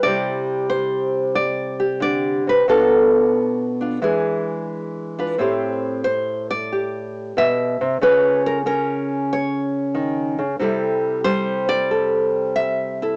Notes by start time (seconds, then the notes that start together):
0.03 C3 G3 E4 G4 D5
0.69 C5
1.35 D5
1.80 G4
2.00 D3 D5
2.47 C3 B4
2.68 B2 B3 D4 F4 A4
3.81 D4 F4
4.02 E3 G#3 D4 G#4
5.18 D4 F4 B4
5.38 A2 C4 E4 G4 C5
6.04 C5
6.51 D5
6.72 G4
7.37 B2 E5
7.81 C3
8.01 C#3 C#4 F4 B4
8.46 A#4
8.66 C#4 A#4
9.33 C#5
9.95 D#3
10.39 C#3
10.60 C3 G3 E4 A4 D5
11.24 G3 C5
11.69 D5
11.91 A4
12.56 E5
13.02 E4 A4